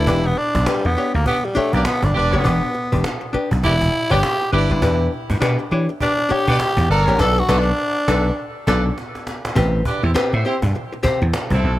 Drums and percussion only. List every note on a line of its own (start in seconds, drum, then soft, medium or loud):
0.07 cajon bass loud
0.37 cajon slap soft
0.55 cajon bass loud
0.66 cajon slap loud
0.96 cajon slap soft
1.14 cajon slap soft
1.25 cajon bass medium
1.25 cajon slap soft
1.43 cajon slap soft
1.55 cajon slap soft
1.73 cajon bass medium
1.73 cajon slap soft
1.85 cajon slap loud
2.02 cajon bass loud
2.02 cajon slap soft
2.15 cajon slap soft
2.33 cajon slap soft
2.45 cajon bass loud
2.75 cajon slap soft
2.92 cajon bass medium
2.92 cajon slap soft
3.04 cajon slap loud
3.34 cajon slap soft
3.51 cajon bass medium
3.51 cajon slap soft
3.64 cajon bass loud
3.64 cajon slap medium
3.81 cajon bass loud
3.93 cajon slap soft
4.11 cajon bass medium
4.23 cajon slap loud
4.41 cajon slap soft
4.53 cajon slap soft
4.82 cajon bass loud
5.12 cajon slap soft
5.30 cajon bass loud
5.42 cajon slap loud
5.72 cajon slap soft
5.89 cajon slap soft
6.00 cajon bass medium
6.00 cajon slap medium
6.19 cajon slap soft
6.30 cajon slap soft
6.48 cajon bass medium
6.48 cajon slap soft
6.60 cajon slap loud
6.77 cajon bass loud
6.77 cajon slap soft
6.89 cajon slap soft
7.07 cajon slap soft
7.19 cajon bass loud
7.19 cajon slap loud
7.49 cajon bass loud
7.49 cajon slap loud
8.08 cajon bass loud
8.08 cajon slap loud
8.67 cajon bass loud
8.67 cajon slap loud
8.98 cajon slap medium
9.15 cajon slap medium
9.27 cajon slap medium
9.45 cajon slap loud
9.56 cajon bass loud
9.85 cajon bass medium
10.04 cajon slap soft
10.16 cajon slap loud
10.45 cajon slap soft
10.62 cajon bass medium
10.75 cajon slap medium
10.93 cajon slap soft
11.04 cajon bass loud
11.22 cajon slap soft
11.33 cajon slap loud
11.50 cajon bass medium
11.50 cajon slap soft
11.63 cajon slap soft